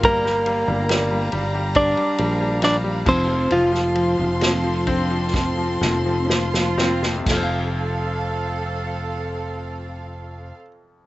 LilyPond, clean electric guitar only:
\new Staff \with { instrumentName = "Clean electric guitar" } { \time 4/4 \key f \major \tempo 4 = 64 <bes bes'>4. r8 <d' d''>4 <d' d''>8 <c' c''>8 | <f f'>2. r4 | r1 | }